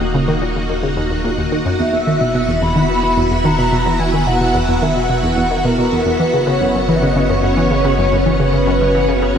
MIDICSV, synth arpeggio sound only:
0, 0, Header, 1, 2, 480
1, 0, Start_track
1, 0, Tempo, 550459
1, 1563, Time_signature, 4, 2, 24, 8
1, 8180, End_track
2, 0, Start_track
2, 0, Title_t, "Synth arpeggio sound"
2, 0, Program_c, 0, 84
2, 4, Note_on_c, 0, 39, 75
2, 70, Note_off_c, 0, 39, 0
2, 125, Note_on_c, 0, 49, 87
2, 223, Note_off_c, 0, 49, 0
2, 244, Note_on_c, 0, 51, 98
2, 310, Note_off_c, 0, 51, 0
2, 365, Note_on_c, 0, 46, 72
2, 463, Note_off_c, 0, 46, 0
2, 483, Note_on_c, 0, 39, 74
2, 550, Note_off_c, 0, 39, 0
2, 604, Note_on_c, 0, 39, 85
2, 670, Note_off_c, 0, 39, 0
2, 723, Note_on_c, 0, 49, 77
2, 822, Note_off_c, 0, 49, 0
2, 844, Note_on_c, 0, 39, 102
2, 943, Note_off_c, 0, 39, 0
2, 963, Note_on_c, 0, 39, 77
2, 1030, Note_off_c, 0, 39, 0
2, 1085, Note_on_c, 0, 46, 100
2, 1124, Note_off_c, 0, 46, 0
2, 1205, Note_on_c, 0, 39, 77
2, 1271, Note_off_c, 0, 39, 0
2, 1326, Note_on_c, 0, 51, 75
2, 1424, Note_off_c, 0, 51, 0
2, 1445, Note_on_c, 0, 42, 103
2, 1511, Note_off_c, 0, 42, 0
2, 1564, Note_on_c, 0, 40, 83
2, 1630, Note_off_c, 0, 40, 0
2, 1686, Note_on_c, 0, 40, 69
2, 1751, Note_off_c, 0, 40, 0
2, 1806, Note_on_c, 0, 51, 80
2, 1904, Note_off_c, 0, 51, 0
2, 1926, Note_on_c, 0, 47, 76
2, 2024, Note_off_c, 0, 47, 0
2, 2046, Note_on_c, 0, 47, 83
2, 2144, Note_off_c, 0, 47, 0
2, 2166, Note_on_c, 0, 40, 78
2, 2231, Note_off_c, 0, 40, 0
2, 2286, Note_on_c, 0, 40, 75
2, 2351, Note_off_c, 0, 40, 0
2, 2405, Note_on_c, 0, 51, 75
2, 2503, Note_off_c, 0, 51, 0
2, 2525, Note_on_c, 0, 47, 81
2, 2623, Note_off_c, 0, 47, 0
2, 2645, Note_on_c, 0, 47, 75
2, 2743, Note_off_c, 0, 47, 0
2, 2767, Note_on_c, 0, 40, 78
2, 2831, Note_off_c, 0, 40, 0
2, 2888, Note_on_c, 0, 40, 77
2, 2952, Note_off_c, 0, 40, 0
2, 3007, Note_on_c, 0, 51, 83
2, 3104, Note_off_c, 0, 51, 0
2, 3127, Note_on_c, 0, 47, 79
2, 3224, Note_off_c, 0, 47, 0
2, 3247, Note_on_c, 0, 47, 76
2, 3345, Note_off_c, 0, 47, 0
2, 3366, Note_on_c, 0, 40, 76
2, 3431, Note_off_c, 0, 40, 0
2, 3485, Note_on_c, 0, 40, 85
2, 3550, Note_off_c, 0, 40, 0
2, 3604, Note_on_c, 0, 51, 76
2, 3703, Note_off_c, 0, 51, 0
2, 3724, Note_on_c, 0, 47, 77
2, 3823, Note_off_c, 0, 47, 0
2, 3845, Note_on_c, 0, 47, 73
2, 3943, Note_off_c, 0, 47, 0
2, 3965, Note_on_c, 0, 40, 85
2, 4031, Note_off_c, 0, 40, 0
2, 4087, Note_on_c, 0, 40, 83
2, 4151, Note_off_c, 0, 40, 0
2, 4205, Note_on_c, 0, 51, 79
2, 4303, Note_off_c, 0, 51, 0
2, 4324, Note_on_c, 0, 47, 76
2, 4423, Note_off_c, 0, 47, 0
2, 4444, Note_on_c, 0, 47, 83
2, 4543, Note_off_c, 0, 47, 0
2, 4565, Note_on_c, 0, 40, 76
2, 4630, Note_off_c, 0, 40, 0
2, 4683, Note_on_c, 0, 40, 80
2, 4750, Note_off_c, 0, 40, 0
2, 4804, Note_on_c, 0, 51, 78
2, 4903, Note_off_c, 0, 51, 0
2, 4925, Note_on_c, 0, 47, 82
2, 5023, Note_off_c, 0, 47, 0
2, 5044, Note_on_c, 0, 47, 81
2, 5143, Note_off_c, 0, 47, 0
2, 5164, Note_on_c, 0, 40, 71
2, 5230, Note_off_c, 0, 40, 0
2, 5284, Note_on_c, 0, 40, 79
2, 5350, Note_off_c, 0, 40, 0
2, 5404, Note_on_c, 0, 52, 83
2, 5503, Note_off_c, 0, 52, 0
2, 5524, Note_on_c, 0, 49, 76
2, 5623, Note_off_c, 0, 49, 0
2, 5643, Note_on_c, 0, 49, 80
2, 5742, Note_off_c, 0, 49, 0
2, 5765, Note_on_c, 0, 42, 76
2, 5830, Note_off_c, 0, 42, 0
2, 5884, Note_on_c, 0, 42, 85
2, 5950, Note_off_c, 0, 42, 0
2, 6004, Note_on_c, 0, 52, 80
2, 6103, Note_off_c, 0, 52, 0
2, 6124, Note_on_c, 0, 49, 77
2, 6223, Note_off_c, 0, 49, 0
2, 6243, Note_on_c, 0, 49, 79
2, 6342, Note_off_c, 0, 49, 0
2, 6363, Note_on_c, 0, 42, 83
2, 6429, Note_off_c, 0, 42, 0
2, 6482, Note_on_c, 0, 42, 77
2, 6549, Note_off_c, 0, 42, 0
2, 6602, Note_on_c, 0, 52, 76
2, 6702, Note_off_c, 0, 52, 0
2, 6722, Note_on_c, 0, 49, 79
2, 6822, Note_off_c, 0, 49, 0
2, 6842, Note_on_c, 0, 49, 83
2, 6942, Note_off_c, 0, 49, 0
2, 6962, Note_on_c, 0, 42, 74
2, 7029, Note_off_c, 0, 42, 0
2, 7082, Note_on_c, 0, 42, 76
2, 7149, Note_off_c, 0, 42, 0
2, 7203, Note_on_c, 0, 52, 78
2, 7302, Note_off_c, 0, 52, 0
2, 7323, Note_on_c, 0, 49, 88
2, 7422, Note_off_c, 0, 49, 0
2, 7442, Note_on_c, 0, 49, 72
2, 7542, Note_off_c, 0, 49, 0
2, 7563, Note_on_c, 0, 42, 81
2, 7629, Note_off_c, 0, 42, 0
2, 7683, Note_on_c, 0, 42, 74
2, 7750, Note_off_c, 0, 42, 0
2, 7802, Note_on_c, 0, 52, 86
2, 7902, Note_off_c, 0, 52, 0
2, 7922, Note_on_c, 0, 49, 83
2, 8022, Note_off_c, 0, 49, 0
2, 8042, Note_on_c, 0, 49, 78
2, 8142, Note_off_c, 0, 49, 0
2, 8180, End_track
0, 0, End_of_file